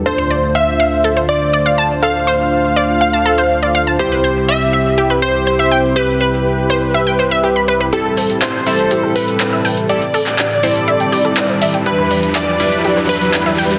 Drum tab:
HH |----------------|----------------|----------------|----------------|
CP |----------------|----------------|----------------|----------------|

HH |x-oxx-oxx-oxx-ox|xxoxxxoxxxoxxxox|x-oxx-oxx-oxx-ox|
CP |----x-------x---|---xx-------x---|----x-------x---|